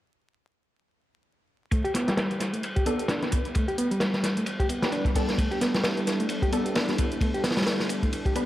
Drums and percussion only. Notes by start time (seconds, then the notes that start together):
1.71 kick, closed hi-hat, ride
1.84 closed hi-hat, ride
1.94 snare, closed hi-hat, ride
2.08 snare, closed hi-hat
2.17 snare, closed hi-hat, ride
2.31 closed hi-hat
2.40 snare, closed hi-hat, ride
2.54 closed hi-hat
2.63 closed hi-hat, ride
2.76 kick, closed hi-hat
2.86 closed hi-hat, ride
2.99 closed hi-hat
3.08 snare, closed hi-hat, ride
3.22 snare, closed hi-hat
3.32 kick, closed hi-hat, ride
3.45 closed hi-hat
3.55 kick, closed hi-hat, ride
3.68 closed hi-hat
3.78 closed hi-hat
3.91 closed hi-hat
4.00 snare, closed hi-hat, ride
4.13 snare, closed hi-hat
4.23 snare, closed hi-hat, ride
4.37 closed hi-hat
4.46 closed hi-hat, ride
4.60 kick, closed hi-hat
4.69 closed hi-hat, ride
4.83 snare, closed hi-hat
4.92 closed hi-hat, ride
5.05 kick, closed hi-hat
5.15 kick, closed hi-hat, open hi-hat
5.28 snare, closed hi-hat
5.38 kick, closed hi-hat, ride
5.51 closed hi-hat, ride
5.61 snare, closed hi-hat, ride
5.74 snare, closed hi-hat
5.83 snare, closed hi-hat, ride
5.97 closed hi-hat
6.07 snare, closed hi-hat, ride
6.20 closed hi-hat
6.29 closed hi-hat, ride
6.42 kick, closed hi-hat
6.53 closed hi-hat, ride
6.66 closed hi-hat
6.76 snare, closed hi-hat, ride
6.88 snare, closed hi-hat
6.98 kick, closed hi-hat, ride
7.12 closed hi-hat
7.21 kick, closed hi-hat, ride
7.34 closed hi-hat
7.44 snare, closed hi-hat, ride
7.50 snare, ride
7.57 snare, closed hi-hat, ride
7.61 snare, ride
7.66 snare, closed hi-hat, ride
7.80 snare, closed hi-hat
7.89 closed hi-hat, ride
8.03 kick, closed hi-hat
8.13 closed hi-hat, ride
8.25 kick, closed hi-hat
8.35 closed hi-hat, ride